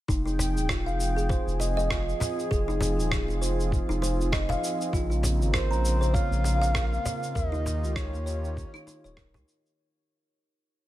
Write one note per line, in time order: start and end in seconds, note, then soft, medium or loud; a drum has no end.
0.08 0.57 F1 medium
0.08 4.89 F3 medium
0.08 7.32 C4 medium
0.08 0.24 D#4 medium
0.08 4.89 G#4 medium
0.08 2.49 G5 medium
0.08 kick medium
0.08 cabasa soft
0.26 0.68 D#4 medium
0.26 cabasa soft
0.39 cajon bass medium
0.39 cajon slap medium
0.39 cabasa medium
0.56 0.88 D#1 medium
0.56 cabasa soft
0.69 0.79 F4 medium
0.69 kick loud
0.69 cross-stick medium
0.69 cabasa soft
0.86 1.38 F1 loud
0.86 0.99 F5 medium
0.86 cabasa soft
1.00 cabasa medium
1.17 1.28 G#4 medium
1.17 cabasa soft
1.29 1.46 C5 medium
1.29 kick medium
1.29 cajon slap medium
1.29 cabasa soft
1.47 2.14 F1 loud
1.47 cabasa soft
1.60 1.75 D#5 medium
1.60 cajon slap medium
1.60 cabasa medium
1.77 1.89 D#5 medium
1.77 cabasa soft
1.90 2.00 F4 medium
1.90 kick medium
1.90 cross-stick medium
1.90 cabasa soft
2.09 cabasa soft
2.20 cajon bass medium
2.20 cajon slap medium
2.20 cabasa medium
2.39 cabasa soft
2.51 3.00 F1 medium
2.51 4.91 F4 medium
2.51 2.67 G#4 medium
2.51 kick loud
2.51 cabasa soft
2.68 3.27 D#4 medium
2.68 cabasa soft
2.81 cajon bass medium
2.81 cajon slap medium
2.81 cabasa medium
2.98 3.30 D#1 loud
2.98 cabasa soft
3.12 kick loud
3.12 cross-stick medium
3.12 cabasa soft
3.28 3.80 F1 loud
3.28 cajon slap soft
3.28 cabasa soft
3.42 3.51 C5 medium
3.42 cabasa medium
3.60 cabasa soft
3.72 kick loud
3.72 cabasa soft
3.89 4.56 F1 loud
3.89 4.01 D#4 loud
3.89 cabasa soft
4.02 4.31 C5 medium
4.02 cajon slap medium
4.02 cabasa medium
4.21 cabasa soft
4.32 4.48 D#5 medium
4.32 kick loud
4.32 cross-stick medium
4.32 cabasa soft
4.49 4.92 F5 loud
4.49 cajon bass medium
4.49 cabasa soft
4.64 cabasa medium
4.81 cabasa soft
4.93 5.42 A#1 medium
4.93 7.33 C#3 medium
4.93 9.74 A#3 medium
4.93 5.09 F4 medium
4.93 kick loud
4.93 cabasa soft
5.10 5.52 F4 medium
5.10 cabasa soft
5.23 cajon bass medium
5.23 cajon slap medium
5.23 cabasa medium
5.40 5.72 G#1 medium
5.40 cabasa soft
5.53 5.63 A#4 medium
5.53 6.15 C5 loud
5.53 kick loud
5.53 cross-stick medium
5.53 cabasa soft
5.71 6.22 A#1 loud
5.71 5.83 A#5 medium
5.71 cabasa soft
5.85 cabasa medium
6.01 6.13 C5 medium
6.01 cabasa soft
6.14 6.31 C#5 medium
6.14 7.35 F5 loud
6.14 kick loud
6.14 cajon slap medium
6.14 cabasa soft
6.31 6.98 A#1 loud
6.31 cabasa soft
6.44 6.60 F5 medium
6.44 cajon slap medium
6.44 cabasa medium
6.62 6.73 F5 medium
6.62 cabasa soft
6.74 6.85 A#4 medium
6.74 kick loud
6.74 cross-stick medium
6.74 cabasa soft
6.93 cabasa soft
7.05 cajon bass medium
7.05 cajon slap medium
7.05 cabasa medium
7.23 cabasa soft
7.35 7.84 D#2 medium
7.35 9.75 D#3 medium
7.35 9.75 F4 medium
7.35 9.75 G4 medium
7.35 7.52 A#4 medium
7.35 7.97 D#5 loud
7.35 kick loud
7.35 cabasa soft
7.52 8.11 D#4 medium
7.52 cabasa soft
7.66 cajon bass medium
7.66 cajon slap medium
7.66 cabasa medium
7.83 8.14 C#2 medium
7.83 cabasa soft
7.96 9.48 C#5 loud
7.96 kick loud
7.96 cross-stick medium
7.96 cabasa soft
8.13 8.65 D#2 loud
8.13 cajon slap soft
8.13 cabasa soft
8.26 8.36 C#5 medium
8.26 cabasa medium
8.44 cabasa soft
8.57 kick loud
8.57 cabasa soft
8.74 8.86 D#4 loud
8.74 cabasa soft
8.74 claves medium
8.87 8.97 D#4 medium
8.87 cajon slap medium
8.87 cabasa medium
9.04 9.36 D#1 medium
9.04 9.17 C#5 loud
9.04 cabasa soft
9.17 9.33 A#4 medium
9.17 kick loud
9.17 cross-stick medium
9.17 cabasa soft
9.34 9.44 C#2 medium
9.34 9.47 G4 loud
9.34 cajon bass medium
9.34 cabasa soft
9.48 cabasa medium
9.66 cabasa soft